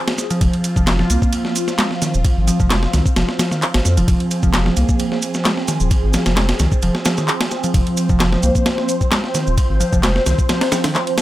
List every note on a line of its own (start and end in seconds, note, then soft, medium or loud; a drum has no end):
0.00 11.22 F3 medium
0.00 11.22 C4 medium
0.00 0.40 G#4 medium
0.08 snare loud
0.08 ride medium
0.18 snare soft
0.18 shaker medium
0.30 0.75 F3 loud
0.30 ride medium
0.30 shaker soft
0.41 0.49 F1 loud
0.41 4.06 F4 medium
0.41 kick loud
0.41 ride medium
0.41 shaker soft
0.53 ride soft
0.64 ride medium
0.64 shaker medium
0.76 1.03 F1 medium
0.76 0.86 F3 medium
0.76 kick medium
0.76 shaker soft
0.87 0.98 F3 medium
0.87 snare loud
0.87 clap loud
0.87 ride medium
0.87 shaker soft
0.99 1.09 F3 loud
0.99 snare soft
1.10 1.17 C2 medium
1.10 1.55 A#3 medium
1.10 ride medium
1.10 shaker medium
1.22 kick loud
1.22 shaker soft
1.33 ride medium
1.33 shaker soft
1.45 snare soft
1.56 ride medium
1.56 shaker medium
1.68 snare soft
1.68 shaker soft
1.79 1.85 G#3 medium
1.79 snare loud
1.79 clap loud
1.79 ride medium
1.79 shaker soft
1.91 snare soft
2.02 2.13 D#3 medium
2.02 snare soft
2.02 ride medium
2.02 shaker medium
2.14 2.24 D#1 medium
2.14 shaker soft
2.25 2.34 G#1 soft
2.25 kick loud
2.25 ride medium
2.25 shaker soft
2.38 2.51 G#1 medium
2.48 2.59 F3 loud
2.48 ride medium
2.48 shaker medium
2.60 2.87 F1 medium
2.60 2.70 F3 medium
2.60 kick medium
2.60 shaker soft
2.70 2.77 G#3 medium
2.70 snare loud
2.70 clap loud
2.70 ride medium
2.70 shaker soft
2.83 snare medium
2.93 3.01 C2 loud
2.93 3.05 D#3 medium
2.93 snare medium
2.93 ride medium
2.93 shaker medium
3.06 kick loud
3.06 shaker soft
3.16 3.24 F1 medium
3.16 3.27 F3 medium
3.16 snare loud
3.16 ride medium
3.16 shaker soft
3.29 snare medium
3.39 3.50 F3 loud
3.39 snare loud
3.39 ride medium
3.39 shaker medium
3.51 3.62 D#3 medium
3.51 snare soft
3.51 shaker soft
3.62 clap loud
3.62 ride medium
3.62 shaker soft
3.74 3.81 G#1 loud
3.74 snare loud
3.74 ride medium
3.85 3.99 F2 medium
3.85 snare soft
3.85 shaker medium
3.97 4.04 D#1 loud
3.97 4.42 F3 loud
3.97 ride medium
3.97 shaker soft
4.08 4.15 F1 loud
4.08 7.73 G#4 medium
4.08 kick loud
4.08 ride medium
4.08 shaker soft
4.20 ride soft
4.31 ride medium
4.31 shaker medium
4.43 4.70 F1 medium
4.43 4.53 F3 medium
4.43 kick medium
4.43 shaker soft
4.54 4.65 F3 medium
4.54 snare loud
4.54 clap loud
4.54 ride medium
4.54 shaker soft
4.66 4.75 F3 loud
4.66 snare medium
4.77 4.84 C2 medium
4.77 5.21 A#3 medium
4.77 ride medium
4.77 shaker medium
4.89 kick loud
4.89 shaker soft
4.99 ride medium
4.99 shaker soft
5.12 snare soft
5.22 ride medium
5.22 shaker medium
5.34 snare soft
5.34 shaker soft
5.45 5.52 G#3 medium
5.45 snare loud
5.45 clap loud
5.45 ride medium
5.45 shaker soft
5.57 snare soft
5.68 5.80 D#3 medium
5.68 snare soft
5.68 ride medium
5.68 shaker medium
5.80 5.90 D#1 medium
5.80 shaker soft
5.91 6.01 G#1 soft
5.91 kick loud
5.91 ride medium
5.91 shaker soft
6.03 6.16 G#1 medium
6.13 6.25 F3 loud
6.13 snare loud
6.13 ride medium
6.13 shaker medium
6.26 6.53 F1 medium
6.26 6.36 F3 medium
6.26 snare loud
6.26 ride medium
6.26 shaker soft
6.36 6.43 G#3 medium
6.36 snare loud
6.36 clap loud
6.36 ride medium
6.36 shaker soft
6.49 snare loud
6.49 ride medium
6.59 6.67 C2 loud
6.59 6.72 D#3 medium
6.59 snare medium
6.59 ride medium
6.59 shaker medium
6.72 kick loud
6.72 shaker soft
6.82 6.90 F1 medium
6.82 6.93 F3 medium
6.82 ride medium
6.82 shaker soft
6.95 snare medium
7.05 7.17 F3 loud
7.05 snare loud
7.05 ride medium
7.05 shaker medium
7.17 7.28 D#3 medium
7.17 snare soft
7.17 shaker soft
7.28 clap loud
7.28 ride medium
7.28 shaker soft
7.41 snare loud
7.41 ride medium
7.51 snare soft
7.51 shaker medium
7.64 8.08 F3 loud
7.64 ride medium
7.64 shaker soft
7.73 7.82 F1 loud
7.73 11.22 C5 medium
7.73 kick loud
7.73 ride medium
7.73 shaker soft
7.87 ride soft
7.97 ride medium
7.97 shaker medium
8.09 8.36 F1 medium
8.09 8.19 F3 medium
8.09 kick loud
8.09 shaker soft
8.20 8.31 F3 medium
8.20 snare loud
8.20 clap loud
8.20 ride medium
8.20 shaker soft
8.33 8.42 F3 loud
8.33 snare medium
8.43 8.50 C2 loud
8.43 8.88 A#3 medium
8.43 ride medium
8.43 shaker medium
8.55 kick medium
8.55 shaker soft
8.66 snare loud
8.66 ride medium
8.66 shaker soft
8.78 snare soft
8.89 ride medium
8.89 shaker medium
9.01 kick medium
9.01 shaker soft
9.12 9.18 G#3 medium
9.12 snare loud
9.12 clap loud
9.12 ride medium
9.12 shaker soft
9.24 snare soft
9.35 9.46 D#3 medium
9.35 snare soft
9.35 ride medium
9.35 shaker medium
9.47 9.57 D#1 medium
9.47 shaker soft
9.58 9.67 G#1 soft
9.58 kick loud
9.58 ride medium
9.58 shaker soft
9.69 9.83 G#1 medium
9.80 9.91 F3 loud
9.80 ride medium
9.80 shaker medium
9.92 10.20 F1 medium
9.92 10.03 F3 medium
9.92 kick loud
9.92 shaker soft
10.03 10.10 G#3 medium
10.03 snare loud
10.03 clap loud
10.03 ride medium
10.03 shaker soft
10.16 snare medium
10.26 10.34 C2 medium
10.26 10.38 D#3 medium
10.26 snare medium
10.26 ride medium
10.26 shaker medium
10.39 kick loud
10.39 shaker soft
10.49 10.59 F3 medium
10.49 snare loud
10.49 ride medium
10.49 shaker soft
10.61 snare loud
10.61 ride medium
10.72 10.83 F3 loud
10.72 snare loud
10.72 ride medium
10.72 shaker medium
10.84 10.95 D#3 medium
10.84 snare loud
10.84 ride medium
10.84 shaker soft
10.95 snare soft
10.95 clap loud
10.95 shaker soft
11.07 ride medium
11.18 snare loud
11.18 ride medium
11.18 shaker medium